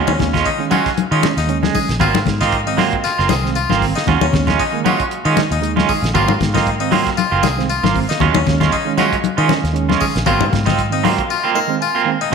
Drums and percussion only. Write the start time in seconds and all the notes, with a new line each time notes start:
0.08 high conga
0.19 kick, snare, closed hi-hat, low conga
0.34 kick, snare, closed hi-hat, low conga
0.46 kick, closed hi-hat
0.71 closed hi-hat, high conga
0.86 kick, snare, closed hi-hat
0.97 closed hi-hat, high conga
1.23 snare, closed hi-hat, high conga
1.37 snare, closed hi-hat
1.49 closed hi-hat
1.63 snare, high conga
1.75 kick, open hi-hat, high conga
1.89 snare, closed hi-hat
2.00 kick, closed hi-hat, low conga
2.15 snare, high conga
2.26 kick, snare, closed hi-hat, low conga
2.41 kick, snare
2.52 kick, closed hi-hat
2.78 snare, open hi-hat, high conga
2.93 kick, closed hi-hat
3.05 snare, closed hi-hat
3.20 snare
3.29 snare, closed hi-hat, high conga
3.46 snare
3.56 closed hi-hat
3.69 snare, high conga
3.82 kick, snare, open hi-hat
3.96 snare, closed hi-hat
4.07 kick, snare, closed hi-hat, low conga
4.21 high conga
4.33 kick, snare, closed hi-hat, low conga
4.47 kick, snare, closed hi-hat, high conga, low conga
4.59 kick, closed hi-hat
4.86 closed hi-hat, high conga
5.00 kick, closed hi-hat
5.11 closed hi-hat
5.37 snare, closed hi-hat, high conga
5.52 closed hi-hat
5.63 closed hi-hat
5.77 snare, high conga
5.89 kick, open hi-hat
6.04 snare, closed hi-hat
6.15 kick, closed hi-hat, low conga
6.28 high conga
6.41 kick, snare, closed hi-hat, low conga
6.54 kick, snare, high conga
6.67 kick, closed hi-hat
6.92 open hi-hat, high conga
7.07 kick, snare, closed hi-hat
7.18 closed hi-hat, high conga
7.43 snare, closed hi-hat, high conga
7.60 snare
7.70 closed hi-hat
7.84 snare, high conga
7.96 kick, open hi-hat
8.10 snare, closed hi-hat
8.20 kick, closed hi-hat, low conga
8.35 high conga
8.47 kick, snare, closed hi-hat, low conga
8.61 kick, snare, closed hi-hat, high conga, low conga
8.73 kick, closed hi-hat
8.98 snare, closed hi-hat, high conga
9.13 kick, closed hi-hat
9.24 closed hi-hat, high conga
9.49 snare, closed hi-hat, high conga
9.65 snare, closed hi-hat
9.76 closed hi-hat
9.89 snare, high conga
10.01 kick, open hi-hat
10.16 snare, closed hi-hat
10.26 kick, closed hi-hat, low conga
10.41 high conga
10.53 kick, snare, closed hi-hat, low conga
10.67 kick, snare, high conga, low conga
10.79 kick, closed hi-hat
11.05 open hi-hat, high conga
11.19 kick, closed hi-hat